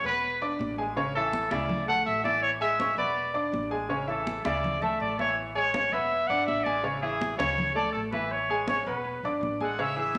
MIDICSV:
0, 0, Header, 1, 6, 480
1, 0, Start_track
1, 0, Key_signature, 3, "major"
1, 0, Tempo, 367647
1, 1251, Time_signature, 4, 2, 24, 8
1, 13294, End_track
2, 0, Start_track
2, 0, Title_t, "Trumpet"
2, 0, Program_c, 0, 56
2, 75, Note_on_c, 0, 71, 97
2, 733, Note_off_c, 0, 71, 0
2, 1502, Note_on_c, 0, 69, 95
2, 1973, Note_on_c, 0, 74, 99
2, 1992, Note_off_c, 0, 69, 0
2, 2447, Note_off_c, 0, 74, 0
2, 2455, Note_on_c, 0, 78, 108
2, 2676, Note_off_c, 0, 78, 0
2, 2688, Note_on_c, 0, 76, 103
2, 2912, Note_off_c, 0, 76, 0
2, 2925, Note_on_c, 0, 74, 96
2, 3151, Note_off_c, 0, 74, 0
2, 3168, Note_on_c, 0, 73, 99
2, 3276, Note_off_c, 0, 73, 0
2, 3412, Note_on_c, 0, 76, 98
2, 3858, Note_off_c, 0, 76, 0
2, 3890, Note_on_c, 0, 74, 96
2, 4560, Note_off_c, 0, 74, 0
2, 5347, Note_on_c, 0, 69, 85
2, 5786, Note_off_c, 0, 69, 0
2, 5813, Note_on_c, 0, 74, 98
2, 6292, Note_on_c, 0, 76, 102
2, 6312, Note_off_c, 0, 74, 0
2, 6531, Note_off_c, 0, 76, 0
2, 6539, Note_on_c, 0, 74, 94
2, 6758, Note_off_c, 0, 74, 0
2, 6782, Note_on_c, 0, 73, 99
2, 7000, Note_off_c, 0, 73, 0
2, 7250, Note_on_c, 0, 73, 98
2, 7733, Note_on_c, 0, 76, 110
2, 7753, Note_off_c, 0, 73, 0
2, 8191, Note_on_c, 0, 78, 111
2, 8211, Note_off_c, 0, 76, 0
2, 8428, Note_off_c, 0, 78, 0
2, 8436, Note_on_c, 0, 76, 102
2, 8665, Note_on_c, 0, 74, 103
2, 8684, Note_off_c, 0, 76, 0
2, 8918, Note_off_c, 0, 74, 0
2, 9157, Note_on_c, 0, 68, 94
2, 9610, Note_off_c, 0, 68, 0
2, 9623, Note_on_c, 0, 73, 102
2, 10082, Note_off_c, 0, 73, 0
2, 10123, Note_on_c, 0, 74, 98
2, 10338, Note_off_c, 0, 74, 0
2, 10346, Note_on_c, 0, 69, 82
2, 10460, Note_off_c, 0, 69, 0
2, 10599, Note_on_c, 0, 71, 92
2, 10855, Note_on_c, 0, 73, 94
2, 10874, Note_off_c, 0, 71, 0
2, 11332, Note_off_c, 0, 73, 0
2, 11342, Note_on_c, 0, 73, 88
2, 11559, Note_off_c, 0, 73, 0
2, 11571, Note_on_c, 0, 71, 80
2, 12240, Note_off_c, 0, 71, 0
2, 13294, End_track
3, 0, Start_track
3, 0, Title_t, "Trumpet section"
3, 0, Program_c, 1, 61
3, 12542, Note_on_c, 1, 69, 83
3, 12547, Note_on_c, 1, 78, 105
3, 12759, Note_off_c, 1, 69, 0
3, 12762, Note_off_c, 1, 78, 0
3, 12796, Note_on_c, 1, 76, 124
3, 12803, Note_on_c, 1, 68, 95
3, 13015, Note_off_c, 1, 76, 0
3, 13022, Note_off_c, 1, 68, 0
3, 13031, Note_on_c, 1, 76, 110
3, 13038, Note_on_c, 1, 68, 83
3, 13294, Note_off_c, 1, 68, 0
3, 13294, Note_off_c, 1, 76, 0
3, 13294, End_track
4, 0, Start_track
4, 0, Title_t, "Grand piano"
4, 0, Program_c, 2, 0
4, 57, Note_on_c, 2, 59, 76
4, 59, Note_on_c, 2, 71, 79
4, 63, Note_on_c, 2, 83, 78
4, 448, Note_off_c, 2, 59, 0
4, 449, Note_off_c, 2, 71, 0
4, 452, Note_off_c, 2, 83, 0
4, 538, Note_on_c, 2, 62, 76
4, 543, Note_on_c, 2, 86, 80
4, 546, Note_on_c, 2, 74, 82
4, 928, Note_off_c, 2, 62, 0
4, 932, Note_off_c, 2, 86, 0
4, 934, Note_off_c, 2, 74, 0
4, 1016, Note_on_c, 2, 56, 75
4, 1022, Note_on_c, 2, 80, 76
4, 1023, Note_on_c, 2, 68, 76
4, 1211, Note_off_c, 2, 56, 0
4, 1214, Note_off_c, 2, 80, 0
4, 1215, Note_off_c, 2, 68, 0
4, 1257, Note_on_c, 2, 49, 86
4, 1259, Note_on_c, 2, 61, 82
4, 1266, Note_on_c, 2, 73, 84
4, 1451, Note_off_c, 2, 49, 0
4, 1452, Note_off_c, 2, 61, 0
4, 1456, Note_off_c, 2, 73, 0
4, 1516, Note_on_c, 2, 52, 78
4, 1521, Note_on_c, 2, 76, 84
4, 1522, Note_on_c, 2, 64, 81
4, 1899, Note_off_c, 2, 52, 0
4, 1902, Note_off_c, 2, 64, 0
4, 1902, Note_off_c, 2, 76, 0
4, 1975, Note_on_c, 2, 49, 89
4, 1977, Note_on_c, 2, 64, 96
4, 1978, Note_on_c, 2, 76, 87
4, 2367, Note_off_c, 2, 49, 0
4, 2368, Note_off_c, 2, 64, 0
4, 2368, Note_off_c, 2, 76, 0
4, 2453, Note_on_c, 2, 57, 77
4, 2456, Note_on_c, 2, 69, 78
4, 2459, Note_on_c, 2, 81, 80
4, 2846, Note_off_c, 2, 57, 0
4, 2848, Note_off_c, 2, 69, 0
4, 2849, Note_off_c, 2, 81, 0
4, 2917, Note_on_c, 2, 52, 78
4, 2923, Note_on_c, 2, 64, 80
4, 2924, Note_on_c, 2, 76, 79
4, 3316, Note_off_c, 2, 52, 0
4, 3319, Note_off_c, 2, 64, 0
4, 3320, Note_off_c, 2, 76, 0
4, 3397, Note_on_c, 2, 56, 80
4, 3407, Note_on_c, 2, 80, 83
4, 3408, Note_on_c, 2, 68, 77
4, 3599, Note_off_c, 2, 56, 0
4, 3605, Note_off_c, 2, 80, 0
4, 3606, Note_off_c, 2, 68, 0
4, 3649, Note_on_c, 2, 61, 74
4, 3652, Note_on_c, 2, 73, 70
4, 3658, Note_on_c, 2, 85, 72
4, 3846, Note_off_c, 2, 61, 0
4, 3848, Note_off_c, 2, 73, 0
4, 3852, Note_off_c, 2, 85, 0
4, 3882, Note_on_c, 2, 59, 77
4, 3891, Note_on_c, 2, 83, 81
4, 3892, Note_on_c, 2, 71, 80
4, 4279, Note_off_c, 2, 59, 0
4, 4284, Note_off_c, 2, 83, 0
4, 4285, Note_off_c, 2, 71, 0
4, 4361, Note_on_c, 2, 62, 78
4, 4363, Note_on_c, 2, 74, 76
4, 4370, Note_on_c, 2, 86, 75
4, 4759, Note_off_c, 2, 62, 0
4, 4760, Note_off_c, 2, 74, 0
4, 4764, Note_off_c, 2, 86, 0
4, 4832, Note_on_c, 2, 56, 74
4, 4843, Note_on_c, 2, 68, 77
4, 4847, Note_on_c, 2, 80, 78
4, 5036, Note_off_c, 2, 56, 0
4, 5043, Note_off_c, 2, 68, 0
4, 5045, Note_off_c, 2, 80, 0
4, 5076, Note_on_c, 2, 49, 81
4, 5083, Note_on_c, 2, 61, 79
4, 5089, Note_on_c, 2, 73, 76
4, 5278, Note_off_c, 2, 49, 0
4, 5283, Note_off_c, 2, 61, 0
4, 5287, Note_off_c, 2, 73, 0
4, 5315, Note_on_c, 2, 52, 77
4, 5317, Note_on_c, 2, 64, 79
4, 5320, Note_on_c, 2, 76, 81
4, 5715, Note_off_c, 2, 52, 0
4, 5716, Note_off_c, 2, 64, 0
4, 5717, Note_off_c, 2, 76, 0
4, 5805, Note_on_c, 2, 49, 90
4, 5810, Note_on_c, 2, 64, 87
4, 5813, Note_on_c, 2, 76, 92
4, 6201, Note_off_c, 2, 49, 0
4, 6204, Note_off_c, 2, 64, 0
4, 6206, Note_off_c, 2, 76, 0
4, 6297, Note_on_c, 2, 57, 80
4, 6298, Note_on_c, 2, 69, 82
4, 6300, Note_on_c, 2, 81, 79
4, 6688, Note_off_c, 2, 57, 0
4, 6688, Note_off_c, 2, 69, 0
4, 6690, Note_off_c, 2, 81, 0
4, 6774, Note_on_c, 2, 52, 78
4, 6774, Note_on_c, 2, 64, 76
4, 6783, Note_on_c, 2, 76, 78
4, 7166, Note_off_c, 2, 52, 0
4, 7166, Note_off_c, 2, 64, 0
4, 7172, Note_off_c, 2, 76, 0
4, 7246, Note_on_c, 2, 68, 76
4, 7248, Note_on_c, 2, 56, 79
4, 7251, Note_on_c, 2, 80, 77
4, 7445, Note_off_c, 2, 68, 0
4, 7446, Note_off_c, 2, 56, 0
4, 7448, Note_off_c, 2, 80, 0
4, 7497, Note_on_c, 2, 61, 74
4, 7500, Note_on_c, 2, 73, 72
4, 7504, Note_on_c, 2, 85, 71
4, 7691, Note_off_c, 2, 61, 0
4, 7693, Note_off_c, 2, 73, 0
4, 7695, Note_off_c, 2, 85, 0
4, 7739, Note_on_c, 2, 59, 80
4, 7747, Note_on_c, 2, 71, 81
4, 7748, Note_on_c, 2, 83, 78
4, 8129, Note_off_c, 2, 59, 0
4, 8134, Note_off_c, 2, 71, 0
4, 8135, Note_off_c, 2, 83, 0
4, 8222, Note_on_c, 2, 86, 80
4, 8223, Note_on_c, 2, 74, 80
4, 8224, Note_on_c, 2, 62, 78
4, 8611, Note_off_c, 2, 86, 0
4, 8612, Note_off_c, 2, 62, 0
4, 8612, Note_off_c, 2, 74, 0
4, 8692, Note_on_c, 2, 56, 76
4, 8698, Note_on_c, 2, 68, 72
4, 8698, Note_on_c, 2, 80, 80
4, 8888, Note_off_c, 2, 56, 0
4, 8892, Note_off_c, 2, 68, 0
4, 8892, Note_off_c, 2, 80, 0
4, 8920, Note_on_c, 2, 49, 85
4, 8925, Note_on_c, 2, 61, 81
4, 8928, Note_on_c, 2, 73, 85
4, 9121, Note_off_c, 2, 49, 0
4, 9124, Note_off_c, 2, 61, 0
4, 9126, Note_off_c, 2, 73, 0
4, 9168, Note_on_c, 2, 52, 77
4, 9170, Note_on_c, 2, 76, 78
4, 9173, Note_on_c, 2, 64, 85
4, 9563, Note_off_c, 2, 52, 0
4, 9564, Note_off_c, 2, 76, 0
4, 9566, Note_off_c, 2, 64, 0
4, 9638, Note_on_c, 2, 49, 87
4, 9647, Note_on_c, 2, 73, 90
4, 9649, Note_on_c, 2, 61, 97
4, 10037, Note_off_c, 2, 49, 0
4, 10042, Note_off_c, 2, 73, 0
4, 10043, Note_off_c, 2, 61, 0
4, 10121, Note_on_c, 2, 57, 82
4, 10122, Note_on_c, 2, 69, 78
4, 10129, Note_on_c, 2, 81, 80
4, 10518, Note_off_c, 2, 57, 0
4, 10519, Note_off_c, 2, 69, 0
4, 10523, Note_off_c, 2, 81, 0
4, 10612, Note_on_c, 2, 52, 73
4, 10616, Note_on_c, 2, 64, 78
4, 10622, Note_on_c, 2, 76, 76
4, 11005, Note_off_c, 2, 52, 0
4, 11007, Note_off_c, 2, 64, 0
4, 11010, Note_off_c, 2, 76, 0
4, 11094, Note_on_c, 2, 56, 74
4, 11096, Note_on_c, 2, 68, 81
4, 11105, Note_on_c, 2, 80, 81
4, 11289, Note_off_c, 2, 56, 0
4, 11290, Note_off_c, 2, 68, 0
4, 11296, Note_off_c, 2, 80, 0
4, 11323, Note_on_c, 2, 61, 75
4, 11335, Note_on_c, 2, 85, 74
4, 11336, Note_on_c, 2, 73, 70
4, 11522, Note_off_c, 2, 61, 0
4, 11530, Note_off_c, 2, 73, 0
4, 11530, Note_off_c, 2, 85, 0
4, 11580, Note_on_c, 2, 59, 77
4, 11581, Note_on_c, 2, 71, 81
4, 11588, Note_on_c, 2, 83, 74
4, 11969, Note_off_c, 2, 59, 0
4, 11970, Note_off_c, 2, 71, 0
4, 11974, Note_off_c, 2, 83, 0
4, 12067, Note_on_c, 2, 62, 78
4, 12075, Note_on_c, 2, 74, 73
4, 12077, Note_on_c, 2, 86, 83
4, 12453, Note_off_c, 2, 62, 0
4, 12458, Note_off_c, 2, 74, 0
4, 12459, Note_off_c, 2, 86, 0
4, 12538, Note_on_c, 2, 56, 75
4, 12543, Note_on_c, 2, 68, 71
4, 12547, Note_on_c, 2, 80, 75
4, 12731, Note_off_c, 2, 56, 0
4, 12734, Note_off_c, 2, 68, 0
4, 12736, Note_off_c, 2, 80, 0
4, 12773, Note_on_c, 2, 61, 84
4, 12778, Note_on_c, 2, 49, 80
4, 12781, Note_on_c, 2, 73, 86
4, 12968, Note_off_c, 2, 61, 0
4, 12971, Note_off_c, 2, 49, 0
4, 12972, Note_off_c, 2, 73, 0
4, 13005, Note_on_c, 2, 52, 80
4, 13006, Note_on_c, 2, 64, 84
4, 13009, Note_on_c, 2, 68, 85
4, 13294, Note_off_c, 2, 52, 0
4, 13294, Note_off_c, 2, 64, 0
4, 13294, Note_off_c, 2, 68, 0
4, 13294, End_track
5, 0, Start_track
5, 0, Title_t, "Upright bass"
5, 0, Program_c, 3, 32
5, 47, Note_on_c, 3, 28, 98
5, 718, Note_off_c, 3, 28, 0
5, 770, Note_on_c, 3, 33, 96
5, 1894, Note_off_c, 3, 33, 0
5, 1974, Note_on_c, 3, 38, 98
5, 2642, Note_off_c, 3, 38, 0
5, 2696, Note_on_c, 3, 33, 98
5, 3817, Note_off_c, 3, 33, 0
5, 3874, Note_on_c, 3, 28, 91
5, 4551, Note_off_c, 3, 28, 0
5, 4599, Note_on_c, 3, 33, 92
5, 5729, Note_off_c, 3, 33, 0
5, 5805, Note_on_c, 3, 38, 90
5, 6477, Note_off_c, 3, 38, 0
5, 6526, Note_on_c, 3, 33, 99
5, 7652, Note_off_c, 3, 33, 0
5, 7731, Note_on_c, 3, 28, 92
5, 8177, Note_off_c, 3, 28, 0
5, 8212, Note_on_c, 3, 32, 79
5, 8434, Note_off_c, 3, 32, 0
5, 8455, Note_on_c, 3, 33, 94
5, 9577, Note_off_c, 3, 33, 0
5, 9648, Note_on_c, 3, 38, 99
5, 10318, Note_off_c, 3, 38, 0
5, 10375, Note_on_c, 3, 33, 93
5, 11496, Note_off_c, 3, 33, 0
5, 11571, Note_on_c, 3, 28, 93
5, 12017, Note_off_c, 3, 28, 0
5, 12051, Note_on_c, 3, 32, 75
5, 12273, Note_off_c, 3, 32, 0
5, 12285, Note_on_c, 3, 33, 90
5, 13294, Note_off_c, 3, 33, 0
5, 13294, End_track
6, 0, Start_track
6, 0, Title_t, "Drums"
6, 77, Note_on_c, 9, 63, 36
6, 207, Note_off_c, 9, 63, 0
6, 309, Note_on_c, 9, 63, 37
6, 439, Note_off_c, 9, 63, 0
6, 554, Note_on_c, 9, 63, 36
6, 685, Note_off_c, 9, 63, 0
6, 792, Note_on_c, 9, 63, 89
6, 922, Note_off_c, 9, 63, 0
6, 1274, Note_on_c, 9, 63, 36
6, 1404, Note_off_c, 9, 63, 0
6, 1508, Note_on_c, 9, 63, 36
6, 1638, Note_off_c, 9, 63, 0
6, 1741, Note_on_c, 9, 63, 102
6, 1871, Note_off_c, 9, 63, 0
6, 1973, Note_on_c, 9, 63, 97
6, 2104, Note_off_c, 9, 63, 0
6, 2213, Note_on_c, 9, 63, 38
6, 2213, Note_on_c, 9, 64, 91
6, 2343, Note_off_c, 9, 63, 0
6, 2343, Note_off_c, 9, 64, 0
6, 2453, Note_on_c, 9, 63, 35
6, 2584, Note_off_c, 9, 63, 0
6, 2704, Note_on_c, 9, 63, 36
6, 2834, Note_off_c, 9, 63, 0
6, 2939, Note_on_c, 9, 63, 87
6, 3069, Note_off_c, 9, 63, 0
6, 3179, Note_on_c, 9, 63, 35
6, 3309, Note_off_c, 9, 63, 0
6, 3415, Note_on_c, 9, 63, 34
6, 3545, Note_off_c, 9, 63, 0
6, 3652, Note_on_c, 9, 63, 95
6, 3782, Note_off_c, 9, 63, 0
6, 3899, Note_on_c, 9, 63, 36
6, 4030, Note_off_c, 9, 63, 0
6, 4143, Note_on_c, 9, 63, 37
6, 4273, Note_off_c, 9, 63, 0
6, 4382, Note_on_c, 9, 63, 35
6, 4513, Note_off_c, 9, 63, 0
6, 4615, Note_on_c, 9, 63, 88
6, 4746, Note_off_c, 9, 63, 0
6, 5104, Note_on_c, 9, 63, 34
6, 5234, Note_off_c, 9, 63, 0
6, 5341, Note_on_c, 9, 63, 34
6, 5471, Note_off_c, 9, 63, 0
6, 5573, Note_on_c, 9, 63, 93
6, 5704, Note_off_c, 9, 63, 0
6, 5810, Note_on_c, 9, 63, 99
6, 5940, Note_off_c, 9, 63, 0
6, 6061, Note_on_c, 9, 63, 39
6, 6061, Note_on_c, 9, 64, 90
6, 6191, Note_off_c, 9, 63, 0
6, 6191, Note_off_c, 9, 64, 0
6, 6292, Note_on_c, 9, 63, 36
6, 6292, Note_on_c, 9, 64, 72
6, 6423, Note_off_c, 9, 63, 0
6, 6423, Note_off_c, 9, 64, 0
6, 6539, Note_on_c, 9, 63, 37
6, 6669, Note_off_c, 9, 63, 0
6, 6779, Note_on_c, 9, 63, 82
6, 6909, Note_off_c, 9, 63, 0
6, 7017, Note_on_c, 9, 63, 36
6, 7148, Note_off_c, 9, 63, 0
6, 7259, Note_on_c, 9, 63, 36
6, 7390, Note_off_c, 9, 63, 0
6, 7496, Note_on_c, 9, 63, 99
6, 7627, Note_off_c, 9, 63, 0
6, 7740, Note_on_c, 9, 63, 37
6, 7870, Note_off_c, 9, 63, 0
6, 7990, Note_on_c, 9, 63, 35
6, 8121, Note_off_c, 9, 63, 0
6, 8227, Note_on_c, 9, 63, 37
6, 8358, Note_off_c, 9, 63, 0
6, 8462, Note_on_c, 9, 63, 87
6, 8593, Note_off_c, 9, 63, 0
6, 8695, Note_on_c, 9, 63, 67
6, 8825, Note_off_c, 9, 63, 0
6, 8931, Note_on_c, 9, 63, 36
6, 9062, Note_off_c, 9, 63, 0
6, 9177, Note_on_c, 9, 63, 37
6, 9307, Note_off_c, 9, 63, 0
6, 9418, Note_on_c, 9, 63, 102
6, 9548, Note_off_c, 9, 63, 0
6, 9659, Note_on_c, 9, 63, 94
6, 9790, Note_off_c, 9, 63, 0
6, 9899, Note_on_c, 9, 63, 38
6, 9899, Note_on_c, 9, 64, 90
6, 10030, Note_off_c, 9, 63, 0
6, 10030, Note_off_c, 9, 64, 0
6, 10134, Note_on_c, 9, 63, 36
6, 10265, Note_off_c, 9, 63, 0
6, 10369, Note_on_c, 9, 63, 37
6, 10499, Note_off_c, 9, 63, 0
6, 10609, Note_on_c, 9, 63, 81
6, 10739, Note_off_c, 9, 63, 0
6, 10844, Note_on_c, 9, 63, 36
6, 10975, Note_off_c, 9, 63, 0
6, 11086, Note_on_c, 9, 63, 36
6, 11217, Note_off_c, 9, 63, 0
6, 11326, Note_on_c, 9, 63, 95
6, 11457, Note_off_c, 9, 63, 0
6, 11578, Note_on_c, 9, 63, 37
6, 11709, Note_off_c, 9, 63, 0
6, 11816, Note_on_c, 9, 63, 39
6, 11947, Note_off_c, 9, 63, 0
6, 12061, Note_on_c, 9, 63, 35
6, 12191, Note_off_c, 9, 63, 0
6, 12309, Note_on_c, 9, 63, 85
6, 12439, Note_off_c, 9, 63, 0
6, 12540, Note_on_c, 9, 63, 69
6, 12671, Note_off_c, 9, 63, 0
6, 12783, Note_on_c, 9, 63, 37
6, 12914, Note_off_c, 9, 63, 0
6, 13025, Note_on_c, 9, 63, 36
6, 13155, Note_off_c, 9, 63, 0
6, 13251, Note_on_c, 9, 63, 103
6, 13294, Note_off_c, 9, 63, 0
6, 13294, End_track
0, 0, End_of_file